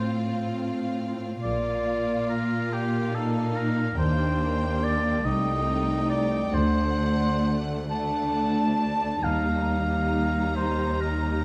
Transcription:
0.00 1.39 A2 soft
0.00 1.40 C4 soft
0.00 1.43 F4 soft
0.00 0.12 C5 soft
0.00 1.39 F5 soft
1.43 2.26 A#1 soft
1.43 3.95 A#2 soft
1.43 3.95 A#3 soft
1.43 3.11 F4 soft
1.43 2.25 D5 medium
1.43 3.95 F5 soft
2.29 2.74 A#4 medium
2.72 3.16 G4 medium
3.14 3.99 D#4 soft
3.14 3.57 A4 soft
3.56 3.97 A#4 medium
3.98 5.23 D#2 soft
3.98 4.79 D#2 soft
3.98 5.23 A#3 soft
3.98 5.23 D4 soft
3.98 4.85 C5 medium
3.98 5.23 G5 soft
4.83 5.26 D5 medium
5.24 6.50 C2 medium
5.24 6.06 C2 soft
5.24 6.53 A3 soft
5.24 6.53 D#4 medium
5.24 6.09 D#5 medium
5.24 6.51 G5 soft
6.09 6.55 D5 medium
6.53 9.21 D2 soft
6.53 7.42 D2 soft
6.53 7.89 A3 soft
6.53 7.91 D4 soft
6.53 7.63 C5 medium
6.53 7.90 F#5 medium
7.91 9.23 A3 soft
7.91 9.23 D4 medium
7.91 8.57 F#5 soft
7.91 9.25 A5 medium
8.58 9.24 A5 soft
9.24 11.45 D#2 soft
9.24 10.09 D#2 soft
9.24 11.45 G3 soft
9.24 11.45 D#4 soft
9.24 10.57 F5 medium
9.24 11.45 A#5 soft
10.56 11.02 C5 medium
11.01 11.44 A#4 soft

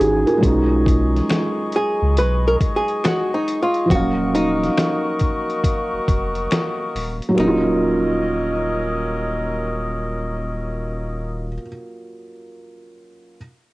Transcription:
0.00 0.25 G#1 loud
0.00 0.44 C#4 medium
0.00 0.26 D#4 medium
0.00 0.44 F#4 medium
0.00 0.25 G#4 medium
0.00 3.86 G#4 medium
0.00 0.40 G#5 medium
0.00 closed hi-hat medium
0.27 0.68 F4 medium
0.27 0.68 A#4 medium
0.27 closed hi-hat soft
0.38 3.84 F#3 medium
0.38 3.85 G#3 medium
0.43 1.21 B1 loud
0.43 3.87 C#4 medium
0.43 7.20 D#5 medium
0.43 7.20 C#6 medium
0.43 kick loud
0.43 closed hi-hat medium
0.47 3.89 D#4 medium
0.86 kick medium
0.86 closed hi-hat medium
1.16 snare soft
1.16 closed hi-hat soft
1.30 finger snap medium
1.30 snare loud
1.30 closed hi-hat medium
1.72 2.18 G#4 medium
1.72 closed hi-hat medium
2.02 2.19 C#2 loud
2.17 2.56 B1 medium
2.17 2.47 B4 loud
2.17 closed hi-hat medium
2.48 2.55 A#4 medium
2.61 kick medium
2.61 closed hi-hat medium
2.76 3.05 G#4 medium
2.88 closed hi-hat soft
3.04 3.31 F#4 medium
3.04 finger snap medium
3.04 finger snap loud
3.04 snare loud
3.04 closed hi-hat medium
3.34 3.62 D#4 medium
3.48 closed hi-hat medium
3.62 3.89 F4 medium
3.74 closed hi-hat soft
3.86 3.96 F3 medium
3.86 7.33 A#3 medium
3.90 4.69 D#1 loud
3.90 7.27 F#3 medium
3.90 7.35 C#4 medium
3.90 7.20 F#4 medium
3.90 4.34 F#4 loud
3.90 7.20 A#4 medium
3.90 kick loud
3.90 closed hi-hat medium
3.95 7.36 F5 medium
4.35 6.91 D#4 medium
4.35 closed hi-hat medium
4.63 snare soft
4.63 closed hi-hat soft
4.77 finger snap medium
4.77 snare loud
4.77 closed hi-hat medium
5.19 kick medium
5.19 closed hi-hat medium
5.50 closed hi-hat soft
5.64 kick medium
5.64 closed hi-hat loud
5.93 5.99 F1 medium
6.08 6.47 F1 medium
6.08 kick medium
6.08 closed hi-hat medium
6.35 closed hi-hat soft
6.51 finger snap medium
6.51 snare loud
6.51 closed hi-hat medium
6.95 7.20 D#1 medium
6.95 open hi-hat medium
7.22 closed hi-hat soft
7.29 11.48 F#3 medium
7.35 11.58 D#1 loud
7.35 11.57 F#3 medium
7.35 11.54 A#3 medium
7.35 11.57 C#4 medium
7.35 11.57 D#4 medium
7.35 11.57 A#4 medium
7.35 11.57 D#5 medium
7.35 finger snap medium
7.40 11.60 C#4 medium
7.40 11.59 D#4 medium
7.47 11.67 F4 medium

